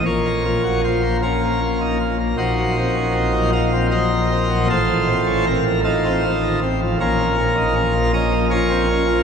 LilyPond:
<<
  \new Staff \with { instrumentName = "Pipe organ" } { \time 3/4 \key bes \minor \tempo 4 = 78 << { <f' bes' des''>4 c''8 <des' f' bes'>4 r8 | <ees' ges' c''>4. f''8 <bes' c'' ees''>4 | <f' a' c''>4 bes'8 <ees' f' a'>4 r8 | <des' f' bes'>4. ees''8 <f' bes' des''>4 | } \\ { bes,16 bes16 f'16 ges'16 f'16 bes16 r16 bes16 f'16 ees'16 f'16 bes16 | bes,16 ges16 c'16 des'16 c'16 ges16 ees'16 c'16 ges16 f16 c'16 ges16 | a,16 f16 c'16 des'16 c'16 f16 r16 c'16 f16 ees16 c'16 f16 | bes,16 f16 des'16 ees'16 des'16 f16 des'16 f16 des'16 c'16 des'16 f16 | } >> }
  \new Staff \with { instrumentName = "Pipe organ" } { \clef bass \time 3/4 \key bes \minor bes,,2. | bes,,2. | a,,2. | bes,,2. | }
>>